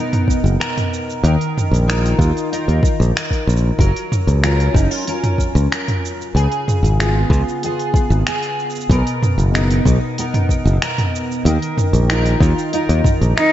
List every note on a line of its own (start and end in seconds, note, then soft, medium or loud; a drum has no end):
0.00 1.24 B2 medium
0.00 1.31 B3 medium
0.00 1.88 D#4 medium
0.00 0.60 A#4 medium
0.13 mid tom medium
0.13 open hi-hat soft
0.28 kick medium
0.28 cabasa medium
0.44 0.56 F#1 medium
0.44 cabasa soft
0.60 1.25 A#4 medium
0.60 finger snap loud
0.60 open hi-hat medium
0.60 cabasa soft
0.78 mid tom medium
0.78 open hi-hat soft
0.94 cabasa medium
1.10 cabasa soft
1.24 1.35 D#2 medium
1.24 3.80 D#3 medium
1.24 1.89 A#4 medium
1.24 open hi-hat medium
1.24 cabasa soft
1.41 open hi-hat soft
1.58 mid tom medium
1.58 cabasa medium
1.71 2.12 A#1 medium
1.71 open hi-hat soft
1.71 cabasa soft
1.88 2.51 D#4 medium
1.88 2.19 F4 medium
1.88 2.53 A#4 medium
1.88 finger snap medium
1.88 open hi-hat medium
1.88 cabasa soft
2.06 open hi-hat soft
2.19 2.31 D#2 medium
2.19 2.52 F4 medium
2.19 kick loud
2.19 cabasa medium
2.37 open hi-hat soft
2.37 cabasa soft
2.52 3.86 D#4 medium
2.52 4.43 F4 medium
2.52 3.15 A#4 medium
2.52 open hi-hat medium
2.52 cabasa soft
2.68 2.79 D#2 medium
2.68 open hi-hat soft
2.83 kick loud
2.83 cabasa medium
3.00 3.11 A#1 medium
3.00 cabasa soft
3.15 3.79 A#4 medium
3.15 finger snap loud
3.15 open hi-hat medium
3.15 cabasa soft
3.31 kick medium
3.31 open hi-hat soft
3.47 3.70 A#1 medium
3.47 cabasa medium
3.57 cabasa soft
3.79 3.91 F#1 medium
3.79 6.35 F#3 medium
3.79 4.44 A#4 medium
3.79 kick loud
3.79 open hi-hat medium
3.79 cabasa soft
3.96 open hi-hat soft
4.12 mid tom medium
4.12 cabasa medium
4.27 4.68 C#2 medium
4.27 open hi-hat soft
4.27 cabasa soft
4.43 5.07 C#4 medium
4.43 4.75 F4 medium
4.43 5.07 A#4 medium
4.43 finger snap medium
4.43 open hi-hat medium
4.43 cabasa soft
4.60 open hi-hat soft
4.74 4.86 F#1 medium
4.74 4.91 D#4 medium
4.74 kick loud
4.74 cabasa medium
4.91 5.06 F4 soft
4.91 cabasa soft
5.07 6.99 C#4 medium
5.07 7.00 F4 medium
5.07 5.70 A#4 medium
5.07 open hi-hat medium
5.07 cabasa soft
5.24 mid tom medium
5.24 open hi-hat soft
5.38 kick medium
5.38 cabasa medium
5.55 5.67 C#2 medium
5.55 cabasa soft
5.72 6.35 A#4 medium
5.72 finger snap medium
5.72 open hi-hat medium
5.72 cabasa soft
5.88 mid tom medium
5.88 open hi-hat soft
6.05 cabasa medium
6.22 cabasa soft
6.35 6.46 C#2 medium
6.35 8.90 C#3 medium
6.35 6.99 G#4 medium
6.35 open hi-hat medium
6.35 cabasa soft
6.52 open hi-hat soft
6.68 mid tom medium
6.68 cabasa medium
6.83 7.23 G#1 medium
6.83 open hi-hat soft
6.83 cabasa soft
7.00 7.64 B3 medium
7.00 7.30 F4 medium
7.00 7.64 G#4 medium
7.00 finger snap medium
7.00 open hi-hat medium
7.00 cabasa soft
7.30 7.42 C#2 loud
7.30 7.63 F4 medium
7.30 kick medium
7.30 cabasa medium
7.49 cabasa soft
7.63 9.53 B3 medium
7.63 8.98 F4 medium
7.63 8.27 G#4 medium
7.63 open hi-hat medium
7.63 cabasa soft
7.79 open hi-hat soft
7.94 kick loud
7.94 cabasa medium
8.10 8.22 G#1 medium
8.10 cabasa soft
8.27 8.91 G#4 medium
8.27 finger snap loud
8.27 open hi-hat medium
8.27 cabasa soft
8.42 open hi-hat soft
8.60 cabasa soft
8.70 cabasa soft
8.75 cabasa soft
8.81 cabasa medium
8.89 9.01 B1 medium
8.89 11.46 B2 medium
8.89 9.55 A#4 medium
8.89 kick loud
8.89 open hi-hat medium
8.89 cabasa soft
9.07 open hi-hat soft
9.23 mid tom medium
9.23 cabasa medium
9.38 9.79 F#1 medium
9.38 open hi-hat soft
9.38 cabasa soft
9.54 10.17 B3 medium
9.54 9.87 D#4 medium
9.54 10.20 A#4 medium
9.54 finger snap medium
9.54 open hi-hat medium
9.54 cabasa soft
9.71 open hi-hat soft
9.85 9.97 B1 medium
9.85 10.19 D#4 medium
9.85 kick loud
9.85 cabasa medium
10.18 11.52 B3 medium
10.18 12.09 D#4 medium
10.18 10.82 A#4 medium
10.18 open hi-hat medium
10.18 cabasa soft
10.34 mid tom medium
10.34 open hi-hat soft
10.49 kick medium
10.49 cabasa medium
10.65 10.77 F#1 medium
10.65 cabasa soft
10.82 11.47 A#4 medium
10.82 finger snap loud
10.82 open hi-hat medium
10.82 cabasa soft
10.98 mid tom medium
10.98 open hi-hat soft
11.16 cabasa medium
11.32 cabasa soft
11.45 11.57 D#2 medium
11.45 13.52 D#3 medium
11.45 12.11 A#4 medium
11.45 open hi-hat medium
11.45 cabasa soft
11.62 open hi-hat soft
11.78 mid tom medium
11.78 cabasa medium
11.93 12.34 A#1 medium
11.93 open hi-hat soft
11.93 cabasa soft
12.09 12.72 D#4 medium
12.09 12.41 F4 medium
12.09 12.74 A#4 medium
12.09 finger snap medium
12.09 open hi-hat medium
12.09 cabasa soft
12.26 open hi-hat soft
12.40 12.52 D#2 loud
12.40 12.73 F4 medium
12.40 kick loud
12.40 cabasa medium
12.59 cabasa soft
12.73 13.52 D#4 medium
12.73 13.52 F4 medium
12.73 13.37 A#4 medium
12.73 open hi-hat medium
12.73 cabasa soft
12.89 13.01 D#2 medium
12.89 open hi-hat soft
13.04 kick medium
13.04 mid tom medium
13.04 cabasa medium
13.21 13.33 A#1 medium
13.21 open hi-hat soft
13.21 cabasa soft
13.37 13.52 D#4 medium
13.37 13.52 A#4 medium
13.37 finger snap loud
13.37 cabasa soft